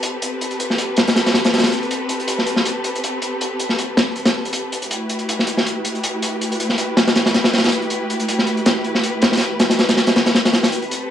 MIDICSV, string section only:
0, 0, Header, 1, 2, 480
1, 0, Start_track
1, 0, Tempo, 375000
1, 522, Time_signature, 4, 2, 24, 8
1, 14214, End_track
2, 0, Start_track
2, 0, Title_t, "String section"
2, 0, Program_c, 0, 48
2, 0, Note_on_c, 0, 60, 81
2, 0, Note_on_c, 0, 67, 73
2, 0, Note_on_c, 0, 69, 70
2, 0, Note_on_c, 0, 71, 88
2, 6231, Note_off_c, 0, 67, 0
2, 6231, Note_off_c, 0, 69, 0
2, 6231, Note_off_c, 0, 71, 0
2, 6232, Note_off_c, 0, 60, 0
2, 6280, Note_on_c, 0, 71, 91
2, 6281, Note_on_c, 0, 57, 83
2, 6281, Note_on_c, 0, 64, 69
2, 6281, Note_on_c, 0, 67, 71
2, 6282, Note_on_c, 0, 66, 72
2, 13910, Note_off_c, 0, 64, 0
2, 13911, Note_off_c, 0, 57, 0
2, 13911, Note_off_c, 0, 66, 0
2, 13911, Note_off_c, 0, 67, 0
2, 13959, Note_on_c, 0, 60, 81
2, 13959, Note_on_c, 0, 67, 74
2, 13959, Note_on_c, 0, 69, 72
2, 14214, Note_off_c, 0, 60, 0
2, 14214, Note_off_c, 0, 67, 0
2, 14214, Note_off_c, 0, 69, 0
2, 14214, Note_off_c, 0, 71, 0
2, 14214, End_track
0, 0, End_of_file